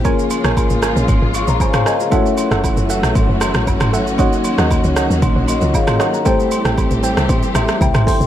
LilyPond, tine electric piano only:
\new Staff \with { instrumentName = "Tine electric piano" } { \time 4/4 \key ees \dorian \tempo 4 = 116 << { r2 r8 <f'' des'''>16 <des'' bes''>16 <c'' aes''>16 <aes' f''>16 ees''16 <f' des''>16~ | <f' des''>16 r2. r8. | r2 r8 <ges' ees''>16 <f' des''>16 <aes' f''>8 <bes' ges''>16 <des'' bes''>16~ | <des'' bes''>16 r2 r16 e''8 g''8 c'''8 | } \\ { <bes des' f' aes' des''>2. r4 | <aes a des' fes' ges' des''>1 | <bes des' ees' ges' des''>1 | <a c' e' g' c''>1 | } >> }